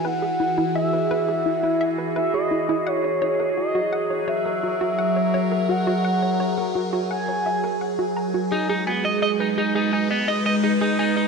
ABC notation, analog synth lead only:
X:1
M:4/4
L:1/16
Q:1/4=85
K:F#mix
V:1 name="Analog synth lead"
f4 e8 e d3 | c4 d4 e8 | f6 z2 g6 z2 | z16 |]